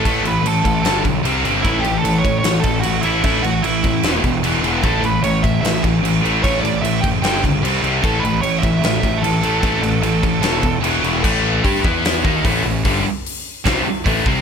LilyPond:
<<
  \new Staff \with { instrumentName = "Lead electric guitar" } { \time 4/4 \key e \dorian \tempo 4 = 150 a'8 b'8 a'4. r4. | e'8 g'8 a'8 cis''8 cis''8 a'8 fis'8 e'8 | e'8 fis'8 e'4. r4. | a'8 b'8 cis''8 e''8 e''8 r4. |
cis''8 d''8 e''8 g''8 g''8 r4. | a'8 b'8 cis''8 e''4 e''8 a'4~ | a'2. r4 | r1 |
r1 | }
  \new Staff \with { instrumentName = "Distorted electric guitar" } { \clef bass \time 4/4 \key e \dorian <a, e a>8 <a, e>8 <a, e>8 <a, e>8 <g, d g>8 <g, d>8 <c g c'>8 <c g c'>8 | <a, e a>8 <a, e>8 <a, e>8 <a, e>8 <a, e>8 <a, e>8 <a, e>8 <a, e a>8 | <a, e a>8 <a, e>8 <a, e>8 <a, e>8 <e, b, e>8 <e, b,>8 <e, b, e>8 <e, b, e>8 | <a, e a>8 <a, e>8 <a, e>8 <a, e>8 <a, e>8 <a, e>8 <a, e>8 <a, e a>8 |
<a, e a>8 <a, e>8 <a, e>8 <a, e>8 <g, d g>8 <g, d>8 <c g c'>8 <c g c'>8 | <a, e a>8 <a, e>8 <a, e>8 <a, e>8 <a, e>8 <a, e>8 <a, e>8 <a, e a>8 | <a, e a>8 <a, e>8 <a, e>8 <a, e>8 <e, b, e>8 <e, b,>8 <e, b, e>8 <e, b, e>8 | <a, e a>4 <g d' g'>8 <e b e'>4 <dis bes dis'>8 <a, e a>8 <a, e>8 |
<g, d g>8 r4. <c g c'>8 r8 <a, e a>8 <c g c'>8 | }
  \new Staff \with { instrumentName = "Overdriven electric guitar" } { \clef bass \time 4/4 \key e \dorian <a, e a>8 <a, e>8 <a, e>8 <a, e>8 <g, d g>8 <g, d>8 <c g c'>8 <c g c'>8 | <a, e a>8 <a, e>8 <a, e>8 <a, e>8 <a, e>8 <a, e>8 <a, e>8 <a, e a>8 | <a, e a>8 <a, e>8 <a, e>8 <a, e>8 <e, b, e>8 <e, b,>8 <e, b, e>8 <e, b, e>8 | <a, e a>8 <a, e>8 <a, e>8 <a, e>8 <a, e>8 <a, e>8 <a, e>8 <a, e a>8 |
<a, e a>8 <a, e>8 <a, e>8 <a, e>8 <g, d g>8 <g, d>8 <c g c'>8 <c g c'>8 | <a, e a>8 <a, e>8 <a, e>8 <a, e>8 <a, e>8 <a, e>8 <a, e>8 <a, e a>8 | <a, e a>8 <a, e>8 <a, e>8 <a, e>8 <e, b, e>8 <e, b,>8 <e, b, e>8 <e, b, e>8 | <a, e a>4 <g d' g'>8 <e b e'>4 <dis bes dis'>8 <a, e a>8 <a, e>8 |
<g, d g>8 r4. <c g c'>8 r8 <a, e a>8 <c g c'>8 | }
  \new Staff \with { instrumentName = "Picked electric bass" } { \clef bass \time 4/4 \key e \dorian a,,8 a,,8 a,,8 a,,8 g,,8 b,,8 c,8 g,,8 | a,,8 a,,8 a,,8 a,,8 a,,8 a,,8 a,,4 | a,,8 a,,8 a,,8 a,,8 e,,8 e,,8 e,,8 e,,8 | a,,8 a,,8 a,,8 a,,8 a,,8 a,,8 a,,4 |
a,,8 a,,8 a,,8 fis,,8 g,,8 cis,8 c,8 c,8 | a,,8 a,,8 a,,8 a,,8 a,,8 a,,8 a,,4 | a,,8 a,,8 a,,8 a,,8 e,,8 e,,8 e,,8 e,,8 | a,,4 g,8 e,4 dis,8 a,,8 a,,8 |
g,,8 r4. c,8 r8 a,,8 c,8 | }
  \new DrumStaff \with { instrumentName = "Drums" } \drummode { \time 4/4 <cymc bd>8 cymc8 cymc8 <cymc bd>8 <cymc sn>8 <cymc bd>8 cymc8 cymc8 | <cymc bd>8 cymc8 cymc8 <cymc bd>8 <cymc sn>8 <cymc bd>8 cymc8 cymc8 | <cymc bd>8 cymc8 cymc8 <cymc bd>8 <cymc sn>8 <cymc bd>8 cymc8 cymc8 | <cymc bd>8 cymc8 cymc8 <cymc bd>8 <cymc sn>16 sn16 <cymc bd>8 cymc8 cymc8 |
<cymc bd>8 cymc8 cymc8 <cymc bd>8 <cymc sn>16 sn16 <cymc bd>8 cymc8 cymc8 | <cymc bd>8 cymc8 cymc8 <cymc bd>8 <cymc sn>8 <cymc bd>8 cymc8 cymc8 | <cymc bd>8 cymc8 cymc8 <cymc bd>8 <cymc sn>8 <cymc bd>8 cymc8 cymc8 | <cymc bd>4 <hho bd>8 bd8 <hho sn>8 bd8 <hho bd>4 |
<hho bd>4 hho4 <hho bd sn>4 <hho bd>8 bd8 | }
>>